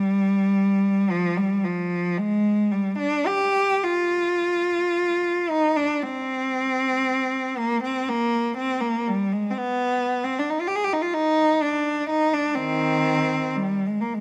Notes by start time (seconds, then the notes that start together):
Already playing: G3
1.10 F3
1.37 G3
1.65 F3
2.18 G#3
2.72 G3
2.99 D4
3.26 G4
3.83 F4
5.50 D#4
5.76 D4
6.02 C4
7.58 A#3
7.83 C4
8.09 A#3
8.58 C4
8.80 A#3
9.07 G3
9.33 G#3
9.51 C4
9.58 B3
10.24 C4
10.39 D4
10.50 D#4
10.61 F4
10.67 G4
10.75 G#4
10.84 G4
10.93 D#4
11.02 F4
11.14 D#4
11.62 D4
12.09 D#4
12.34 D4
12.55 D#3 C4
13.56 G3
13.87 G#3
14.01 A#3
14.14 G#3